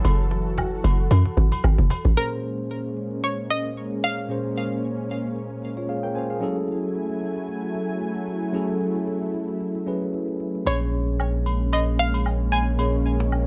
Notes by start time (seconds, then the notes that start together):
Already playing: E3 F#3 A4 F#5
0.04 F#1 F#4, cajon bass, cajon slap, high agogo
0.19 cajon slap
0.31 cajon slap
0.46 cajon slap
0.58 cajon bass, cajon slap, low woodblock
0.72 cajon slap
0.84 F#1, cajon slap, high agogo
0.99 cajon slap
1.11 F#2, cajon bass, high agogo
1.25 cajon bass
1.37 G#1, cajon bass
1.52 cajon bass, high agogo
1.64 G#1, cajon bass, low woodblock
1.78 F#1, cajon bass
1.90 cajon bass, high agogo
2.05 A1, cajon bass
2.15 A#2 G#3 A#3 C#4 G#4 A#4 C5
2.43 cajon slap
2.58 cajon slap
2.70 cajon slap
2.84 cajon slap
2.97 cajon slap
3.11 cajon slap
3.23 C#5, cajon slap
3.38 cajon slap
3.50 D#5, cajon slap
3.64 cajon slap
3.76 cajon slap
3.91 cajon slap
4.03 F5, cajon slap
4.18 cajon slap
4.28 A#2 A#3 C#4 G#4 C5, cajon slap
4.44 cajon slap
4.56 cajon slap
4.71 cajon slap
4.83 cajon slap
4.97 cajon slap
5.09 cajon slap
5.24 cajon slap
5.36 cajon slap
5.50 cajon slap
5.62 cajon slap
5.77 F4 C#5, cajon slap
5.89 G#4 F5, cajon slap
6.03 A#4 G5, cajon slap
6.15 C5 G#5, cajon slap
6.30 G#4 F5, cajon slap
6.40 F#3 A3 C#4 E4 G#4 A4 G#5, cajon slap
6.56 cajon slap
6.68 cajon slap
6.83 cajon slap
6.95 cajon slap
7.09 cajon slap
7.21 cajon slap
7.36 cajon slap
7.48 cajon slap
7.63 cajon slap
7.75 cajon slap
7.89 cajon slap
8.01 cajon slap
8.15 cajon slap
8.27 cajon slap
8.42 cajon slap
8.52 F#3 C#4 E4 G#4 A4, cajon slap
8.69 cajon slap
8.81 cajon slap
8.95 cajon slap
9.07 cajon slap
9.22 cajon slap
9.34 cajon slap
9.48 cajon slap
9.61 cajon slap
9.75 cajon slap
9.86 F#3 C#4 E4 G#4 B4, cajon slap
10.02 cajon slap
10.14 cajon slap
10.28 cajon slap
10.40 cajon slap
10.55 cajon slap
10.65 A#1 A#2 G#3 A#3 C#4 G#4 C#5, high agogo
10.93 cajon slap
11.08 cajon slap
11.20 cajon slap, low woodblock
11.34 cajon slap
11.46 cajon slap, high agogo
11.61 cajon slap
11.73 D#5, high agogo
11.87 cajon slap
11.99 F5
12.14 high agogo
12.26 cajon slap, low woodblock
12.40 cajon slap
12.52 G#5, high agogo
12.67 cajon slap
12.77 A#2 A#3 C#4 G#4 C#5, high agogo
12.94 cajon slap
13.06 cajon slap
13.20 cajon slap
13.32 low woodblock